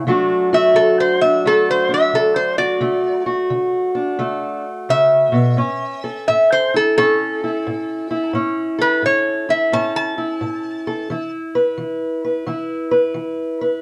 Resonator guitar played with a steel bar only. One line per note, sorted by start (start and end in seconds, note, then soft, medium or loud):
0.54 0.75 E5 medium
0.76 0.98 A4 medium
1.00 1.21 C5 medium
1.21 1.43 E5 medium
1.47 1.68 A4 medium
1.71 1.91 C5 medium
1.94 2.14 E5 medium
2.15 2.36 A4 medium
2.36 2.58 C5 medium
2.58 3.25 D5 medium
4.90 6.24 E5 loud
6.28 6.50 E5 medium
6.52 6.74 C5 medium
6.76 6.96 A4 medium
6.98 8.31 A4 loud
8.81 9.03 B4 medium
9.06 9.49 C#5 medium
9.50 9.72 E5 medium
9.73 9.95 A5 medium
9.96 11.30 A5 medium